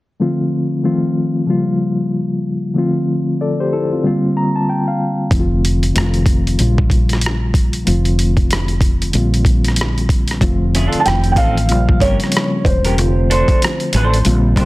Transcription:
0.20 D3 F3 A3 C4 F4
0.83 D#3 F3 A3 C4 F4
1.46 C#3 F3 G3 A#3
1.50 F4
2.74 D3 F3 A3 C4
2.78 F4
3.41 A4 D5
3.60 G4 C5
3.73 E4 A4
3.92 C4 F4
4.03 D3 G3 A#3 C4 F4
4.37 A#5
4.56 A5
4.69 G5
4.88 F5
5.31 F1 D3 F3 A3 C4 E4, kick, closed hi-hat
5.40 F4
5.65 closed hi-hat
5.83 closed hi-hat
5.95 F1 D#3 F3 A3 C4 F4, cross-stick, closed hi-hat
6.14 closed hi-hat
6.26 kick, closed hi-hat
6.47 closed hi-hat
6.57 A#1 C#3 F3 G3 A#3 F4, closed hi-hat
6.78 kick
6.90 kick, closed hi-hat
7.09 cross-stick, closed hi-hat
7.21 closed hi-hat
7.26 cross-stick
7.54 kick, closed hi-hat
7.73 closed hi-hat
7.84 F1 D3 F3 A3 C4 F4, closed hi-hat
8.05 closed hi-hat
8.19 closed hi-hat
8.37 kick, closed hi-hat
8.51 cross-stick, closed hi-hat
8.68 closed hi-hat
8.81 kick, closed hi-hat
9.02 closed hi-hat
9.12 A#1 D3 G3 A#3 C4 F4, closed hi-hat
9.34 closed hi-hat
9.45 kick, closed hi-hat
9.64 cross-stick, closed hi-hat
9.76 closed hi-hat
9.81 cross-stick
9.98 closed hi-hat
10.09 kick, closed hi-hat
10.28 cross-stick, closed hi-hat
10.41 F1 D3 F3 A3 C4 F4, kick, closed hi-hat
10.75 C#4 E4 G#4, closed hi-hat
10.87 D4 F4 A4
10.93 muted fretless electric bass stroke, closed hi-hat
11.00 A5
11.05 F1 D#3 A3 C4 G5, muted clean electric guitar stroke, cross-stick, closed hi-hat
11.24 closed hi-hat
11.32 G5
11.36 A1 C4 D#4 F5, kick, closed hi-hat
11.40 A4
11.57 closed hi-hat
11.69 A#1 C#3 F3 G3 A#3 F4, closed hi-hat
11.89 kick
12.00 G1 C#3 F3 G3 A#3 C4 C#4 G4 A#4 C#5, kick, closed hi-hat
12.09 C#4
12.20 cross-stick, closed hi-hat
12.32 closed hi-hat
12.37 cross-stick
12.65 E1 C5, kick, closed hi-hat
12.85 C#4 G4 A#4, closed hi-hat
12.97 F1 D3 F3 A3 C4 F4, closed hi-hat
13.30 D4 A4 C5, closed hi-hat
13.48 muted fretless electric bass stroke, kick, closed hi-hat
13.62 muted clean electric guitar stroke, cross-stick, closed hi-hat
13.80 closed hi-hat
13.93 A1 D4 A4 C5, closed hi-hat
14.14 closed hi-hat
14.25 A#1 D3 G3 A#3 C4 F4, closed hi-hat
14.56 C2 D3 G3 A#3 C4 D4 G4 C5, kick, closed hi-hat

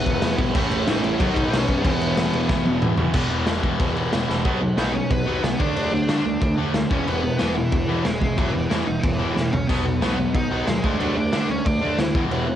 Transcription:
Already playing: E2 B2 E3 G#3 B3 E4 B4
0.06 E1, kick, crash
0.22 E2 E3 G#3 B3 E4, snare, crash
0.38 B1 E2 B2 E3 G#3 B3 E4, kick, crash
0.54 A1 A2 E3 A3 C#4 E4, kick, crash
0.71 A1, crash
0.87 A1 A2 E3 A3 C#4 D#4 E4 D#5, snare, crash
1.03 A1 A2 E3 A3 C#4 E4, crash
1.19 B1 B2 D#3 F#3 B3 D#4 F#4, kick, crash
1.34 B1 D#4 D#5, kick, crash
1.49 B1 B2 D#3 F#3 B3 D#4 D#5, crash
1.53 D#4, snare
1.58 C#4 C#5
1.68 F#2 B2 D#3 F#3 B3 D#4, kick, crash
1.83 E1 E2 B2 E3 G#3 B3 E4 B4, kick, crash
1.87 E3
2.00 E1, crash
2.17 E1 E3 G#3 B3 E4, snare, crash
2.33 E1 E3 G#3 B3 E4, crash
2.49 B1 E3 G#3 B3 E4, kick, snare
2.66 E1, high tom
2.82 E2 E3 G#3 B3 E4, mid tom
2.98 E1 E2 B2 E3 G#3 B3 E4, floor tom
3.14 E1 E2 B2 E3, kick, crash
3.30 E1 E2 B2 E3, crash
3.47 E1 E2 B2 E3, snare, crash
3.63 E1 E2 B2 E3, kick, crash
3.79 E1 E2 B2 E3, kick, crash
3.96 E1 E2 B2 E3, crash
4.12 E1 E2 B2 E3, snare, crash
4.29 E1 E2 B2 E3, snare
4.45 B1 B2 F#3 B3 D#4, kick, crash
4.61 B2 F#3
4.77 B1 B2 F#3 B3 D#4 D#5, snare, crash
4.93 B2 F#3 B3 C#4 D#4 C#5
5.10 B2 F#3 B3 B4, kick, crash
5.26 B1 B2 F#3 B3
5.42 B1 B2 F#3 B3 D#4 B4, snare, crash
5.59 D2 D3 F#3 A3 D4 D5, kick
5.75 D2 D3 A3 D4, crash
5.92 D2 D3 A3 D4 D5
6.08 D3 F#3 A3 D4, snare, crash
6.25 D2 D3 A3
6.41 D2 D3 A3, kick, crash
6.57 D3 F#3 A3 D4
6.74 D2 D3 A3, snare, crash
6.89 E1 E2 B2 E3 G#3 B3 C#4 E4 C#5, kick
7.07 E1 E2 B2 E3 B3 B4, crash
7.23 E2 B2
7.39 E1 E2 B2 E3 G#3 B3 E4, snare, crash
7.56 E2 B2 E3 E4
7.72 E2 B2, kick, crash
7.88 E1 E2 B2 E3 G#3 B3 E4
8.05 E1 E2 B2 G#3 G#4, snare, crash
8.20 C#2 E2 B2 E3 G#3 B3 E4, kick
8.37 E1 E2 B2 E3 F#3 F#4, kick, crash
8.53 E1 E2 B2 E3 E4
8.69 E2 B2 E3 G#3 B3 E4, snare, crash
8.86 E1 E2 B2 D#4 D#5
9.01 E1 E2 B2 E3 E4, kick, crash
9.19 E2 B2 E3 G#3 B3 E4
9.34 E1 E2 B2 E3 E4, snare
9.51 B1 E2 B2 C#4 C#5, floor tom
9.67 B1 B2 F#3 B3 D#4 B4, kick, splash, crash
9.85 B2 F#3
10.01 B1 B2 F#3 B3, snare, crash
10.18 B2 F#3 B3 D#4
10.34 B2 F#3 D#4 D#5, kick, crash
10.51 B1 B2 F#3 B3
10.66 D#2 B2 F#3 G#3 B3 D#4 G#4, snare, crash
10.83 D2 D3 F#3 A3 D4, kick
10.99 D2 D3 F#3 A3 D4 F#4, crash
11.16 D2 D3 A3 D4 D5
11.32 D3 F#3 A3 D4, snare, crash
11.49 D2 D3 A3 C#4 C#5
11.65 D2 D3 A3 D4 D5, kick, crash
11.81 D3 F#3 A3 D4
11.98 D2 D3 E3 A3 E4, snare, crash
12.14 E1 E2 B2 E3 G#3 B3 E4, kick
12.31 E1 E2 B2 E3, crash
12.48 E2 B2

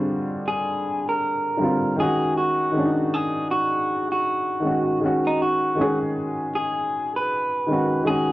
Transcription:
Already playing: D3 G3 G#3 C4 D4 F4
0.48 G#4
1.09 A#4
1.57 D3 G3 C4
1.64 F4
1.96 D#3 G#3 G#4
2.00 C#4 F#4
2.37 F#4
2.72 D#3 G#3
2.76 C#4 D4
2.85 D#4
3.14 G#4
3.51 F#4
4.12 F#4
4.60 D#3 G#3
4.64 C#4 F#4
4.99 D#3 G#3
5.04 C#4 F#4
5.27 D#4
5.42 F#4
5.75 D#3 G#3
5.79 C#4 G#4
6.55 G#4
7.16 B4
7.67 D#3 G#3 C#4
7.73 F#4
8.03 D#3 G#3
8.07 C#4 F#4 G#4

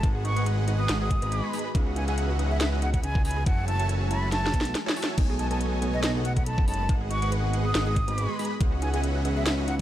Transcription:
0.03 G#1 D#3 G#3 B3 D#4 F#4 G#4 B4 D#5 F#5, kick, closed hi-hat
0.15 G#4
0.25 D#4 C#6, closed hi-hat
0.36 G#3 G#4 B4 D#5 F#5, closed hi-hat
0.46 D#4, closed hi-hat
0.58 G#4
0.68 G#3 D#4 G#4 B4 D#5 F#5, closed hi-hat
0.79 B4 D#6
0.89 G#1 D#4, snare, closed hi-hat
1.01 G#3 G#4 B4 D#5 F#5 D#6
1.11 D#4, kick, closed hi-hat
1.22 G#1 G#3 G#4 B4 D#5 B5, closed hi-hat
1.32 D#4, closed hi-hat
1.44 G#4
1.53 G#3 D#4 G#4 B4 D#5 B5, open hi-hat
1.59 closed hi-hat
1.65 B4
1.75 C#2 E3 C#4 D#4 G#4 B4 E5 F#5, kick, closed hi-hat
1.87 F#4
1.96 D#4 G#5, closed hi-hat
2.08 C#4 G#4 B4 D#5 E5 F#5 G#5, closed hi-hat
2.18 D#4, closed hi-hat
2.29 F#4
2.39 C#4 D#4 G#4 B4 D#5 E5 F#5, closed hi-hat
2.51 G#4 E5
2.61 D#4 E5, snare, closed hi-hat
2.72 C#4 F#4 G#4 B4 D#5 E5 F#5
2.82 D#4 F#5, closed hi-hat
2.93 C#4 G#4 B4 D#5 E5 F#5 B5, kick, closed hi-hat
3.03 C#2 D#4 G#5, closed hi-hat
3.15 F#4, kick
3.25 C#4 D#4 G#4 B4 D#5 E5 G#5 B5, open hi-hat
3.31 closed hi-hat
3.37 G#4
3.46 F#1 G#3 A3 E4 F#4 C#5 E5 F#5 G#5 A5, kick, closed hi-hat
3.58 G#4
3.68 E4 A5, closed hi-hat
3.79 F#4 A4 C#5 E5 G#5 A5, closed hi-hat
3.89 E4, closed hi-hat
4.01 G#4
4.11 E4 F#4 C#5 E5 G#5 A5 B5, closed hi-hat
4.23 A4
4.32 E4 A5, snare, closed hi-hat
4.44 F#4 G#4 C#5 E5 G#5 A5, snare
4.54 B1 E4, kick, closed hi-hat
4.61 snare
4.65 E4, closed hi-hat
4.75 G#4, snare, closed hi-hat
4.86 E4 F#4 C#5 E5 G#5 A5, snare
4.96 C#5, open hi-hat
5.02 snare, closed hi-hat
5.08 E5
5.18 B1 C#3 B3 D#4 G#5, kick, closed hi-hat, crash
5.30 G#4
5.39 D#4 A5, closed hi-hat
5.51 B3 A4 C#5 D#5 G#5 A5, closed hi-hat
5.61 A4, closed hi-hat
5.72 G#4
5.82 B3 D#4 A4 C#5 D#5 G#5, closed hi-hat
5.94 A4 D#5
6.03 D#4 D#5, snare, closed hi-hat
6.15 B3 G#4 A4 C#5 D#5 F#5
6.25 D#4 F#5, closed hi-hat
6.36 B3 A4 C#5 D#5 F#5 B5, kick, closed hi-hat
6.46 A4 A5, closed hi-hat
6.58 F#1 G#4, kick
6.67 B3 D#4 A4 C#5 D#5 A5 B5, open hi-hat
6.74 closed hi-hat
6.79 A4
6.89 G#1 D#3 G#3 B3 D#4 F#4 G#4 B4 D#5 F#5, kick, closed hi-hat
7.01 G#4
7.10 D#4 C#6, closed hi-hat
7.22 G#3 G#4 B4 D#5 F#5, closed hi-hat
7.32 B4, closed hi-hat
7.43 G#4
7.53 G#3 D#4 G#4 B4 D#5 F#5, closed hi-hat
7.65 B4 D#6
7.75 G#1 D#4, snare, closed hi-hat
7.86 G#3 G#4 B4 D#5 F#5 D#6
7.96 D#4, kick, closed hi-hat
8.08 G#1 G#3 G#4 B4 D#5 B5, closed hi-hat
8.18 B4, closed hi-hat
8.29 G#4
8.39 G#3 D#4 G#4 B4 D#5 B5, open hi-hat
8.45 closed hi-hat
8.51 B4
8.60 C#2 E3 C#4 D#4 G#4 D#5 E5 F#5, kick, closed hi-hat
8.72 F#4
8.82 D#4 G#5, closed hi-hat
8.93 C#4 G#4 B4 D#5 E5 F#5 G#5, closed hi-hat
9.04 G#4, closed hi-hat
9.15 F#4
9.25 C#4 D#4 G#4 B4 D#5 E5 F#5, closed hi-hat
9.36 G#4 E5
9.46 D#4 E5, snare, closed hi-hat
9.58 C#4 F#4 G#4 B4 D#5 E5 F#5
9.68 D#4 F#5, closed hi-hat

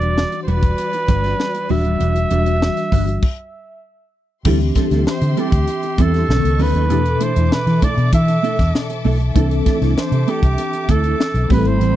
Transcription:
Already playing: E1 E3 G3 D4 F#4 D5
0.01 G3 D4 F#4 B4, closed hi-hat
0.18 snare
0.32 muted clean electric guitar stroke, closed hi-hat
0.42 C5
0.47 E1 G3 D4 F#4 B4, closed hi-hat
0.63 kick, closed hi-hat
0.78 muted clean electric guitar stroke, closed hi-hat
0.93 muted clean electric guitar stroke, closed hi-hat
1.08 G1 G3 D4 F#4 B4, kick, closed hi-hat
1.24 G3 D4 F#4, snare, closed hi-hat
1.39 muted clean electric guitar stroke, snare
1.54 muted clean electric guitar stroke, closed hi-hat
1.69 D#1 E3 G3 D4 F#4 B4 E5, open hi-hat
1.85 G3 D4 F#4 B4, closed hi-hat
2.00 E1 G3 D4 F#4 B4 E5, closed hi-hat
2.16 muted clean electric guitar stroke, closed hi-hat
2.30 E1 E3 G3 D4 F#4 B4, closed hi-hat
2.46 G3 D4 F#4 D5, closed hi-hat
2.62 snare
2.77 muted clean electric guitar stroke, snare, closed hi-hat
2.92 G1 G3 D4 F#4 B4, kick, open hi-hat
3.07 muted clean electric guitar stroke, closed hi-hat
3.22 kick, crash
4.45 D2 E3 G3 C4 D4 E4 G4 A4 E5 C6, kick, crash
4.61 muted clean electric guitar stroke, closed hi-hat
4.75 G3 C4 E4 A4, kick, snare, closed hi-hat
4.91 D2 G3 C4 E4 A4, snare, closed hi-hat
5.06 C5, muted fingered electric bass stroke, snare
5.22 D3, muted clean electric guitar stroke, closed hi-hat
5.37 G3 C4 E4 G4 A4, closed hi-hat
5.52 D2, muted clean electric guitar stroke, kick, closed hi-hat
5.68 muted clean electric guitar stroke, closed hi-hat
5.83 muted clean electric guitar stroke, closed hi-hat
5.98 E2 G3 C4 E4 A4, kick, closed hi-hat
6.13 G3 C4 E4 A4, snare, closed hi-hat
6.29 B1 D3 B3 C#4 A4 D#5 C#6, muted clean electric guitar stroke, snare
6.35 D#3
6.44 C#2, muted clean electric guitar stroke, closed hi-hat
6.59 D2 F#3 C#4 D#4 A4 B4, open hi-hat
6.75 D#2 F#3 C#4 D#4 A4, closed hi-hat
6.90 E2 B2 E3 A3 D4 E4 G4 A4 E5 D6, closed hi-hat
6.99 A4
7.05 muted clean electric guitar stroke, closed hi-hat
7.20 A3 D4 E4 A4 C5, closed hi-hat
7.36 E2 A3 D4 E4 B4, closed hi-hat
7.51 B4, muted fingered electric bass stroke, snare
7.67 E3, muted clean electric guitar stroke, snare, closed hi-hat
7.82 A3 D4 E4 A4 D5, kick, closed hi-hat
7.97 B2, muted clean electric guitar stroke, closed hi-hat
8.13 E3 E5, muted clean electric guitar stroke, kick, closed hi-hat
8.28 muted clean electric guitar stroke, closed hi-hat
8.43 A3 D4 E4 A4, closed hi-hat
8.59 E2, muted clean electric guitar stroke, kick, snare, closed hi-hat
8.75 snare
8.90 muted clean electric guitar stroke, closed hi-hat
9.04 B1 A3 D4 E4 A4, open hi-hat
9.20 muted clean electric guitar stroke, closed hi-hat
9.34 C2 E3 A3 C4 D4 E4 A4 D6, kick, closed hi-hat
9.50 muted clean electric guitar stroke, closed hi-hat
9.66 A3 D4 E4 A4, kick, snare, closed hi-hat
9.81 C2 A3 D4 E4 A4, snare, closed hi-hat
9.98 C5, snare
10.12 C3, muted clean electric guitar stroke, closed hi-hat
10.27 A3 D4 E4 G4 A4, closed hi-hat
10.43 C2, muted clean electric guitar stroke, kick, closed hi-hat
10.58 muted clean electric guitar stroke, closed hi-hat
10.73 muted clean electric guitar stroke, closed hi-hat
10.88 D2 A3 D4 E4 A4, kick, closed hi-hat
11.04 A3 D4 E4 A4, closed hi-hat
11.20 snare
11.34 B1, muted clean electric guitar stroke, closed hi-hat
11.49 A1 G3 A3 C4 E4 G4 B4 C5 B5, kick, open hi-hat
11.58 A4
11.64 G#1 G3 C4 E4 B4 C5, closed hi-hat
11.80 A1 G3 C4 E4 B4, closed hi-hat

